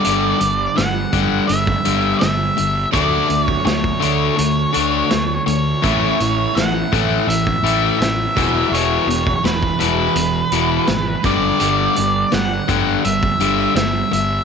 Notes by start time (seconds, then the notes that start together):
Already playing: G2 D3 G3 B3 D4 G4 D5
0.04 G1 G2 D3 G3, closed hi-hat
0.40 G1 G2 D3, closed hi-hat
0.76 G1 G2 D3 F#5, snare, closed hi-hat
1.13 G1 G2 D3 G3, kick, closed hi-hat
1.47 G1 G2 D3 E5, closed hi-hat
1.67 kick
1.85 G1 G2 D3 G3, closed hi-hat
2.19 G2 D3 E5, snare, closed hi-hat
2.23 G1
2.57 G1 G2 D3, closed hi-hat
2.91 D2 D3 A3 D4 D5, kick, closed hi-hat
2.95 F#4
3.28 D2 D3 A3, closed hi-hat
3.45 C#5, kick
3.65 D2 D3 A3 C#5, snare, closed hi-hat
3.84 kick
4.00 D2 D3 A3 D4 C#5, closed hi-hat
4.37 D2 D3 A3, closed hi-hat
4.73 D2 D3 A3 D4, closed hi-hat
5.10 D2 D3 A3, snare, closed hi-hat
5.46 D2 D3 A3 C#5, closed hi-hat
5.82 A1 A2 E3 A3 C#4 E4, kick, closed hi-hat
6.20 A1 A2 E3, closed hi-hat
6.55 A1 A2 E3 F#5, snare, closed hi-hat
6.92 A1 A2 E3 A3, kick, closed hi-hat
7.27 A1 A2 E3 E5, closed hi-hat
7.47 kick
7.63 A1 A2 E3 A3, closed hi-hat
7.99 A1 A2 E3 E5, snare, closed hi-hat
8.35 E1 E2 B2 E3 G#3 B3 G#4, kick, closed hi-hat
8.71 E1 E2 B2 E3 C#5, closed hi-hat
9.07 E1 E2 B2, closed hi-hat
9.27 kick
9.44 E1 E2 B2 B4, snare, closed hi-hat
9.63 kick
9.79 E1 E2 B2 E3 B4, closed hi-hat
10.16 E1 E2 B2, closed hi-hat
10.52 E1 E2 B2 E3, closed hi-hat
10.87 G#1 E2 B2, snare, closed hi-hat
11.22 G1 G2 D3 G3 B3 D4 G4 D5, kick, closed hi-hat
11.60 G1 G2 D3 G3, closed hi-hat
11.96 G1 G2 D3, closed hi-hat
12.32 G1 G2 D3 F#5, snare, closed hi-hat
12.68 G1 G2 D3 G3, kick, closed hi-hat
13.04 G1 G2 D3 E5, closed hi-hat
13.23 kick
13.40 G1 G2 D3 G3, closed hi-hat
13.75 G1 G2 D3 E5, snare, closed hi-hat
14.11 G1 G2 D3 E5, closed hi-hat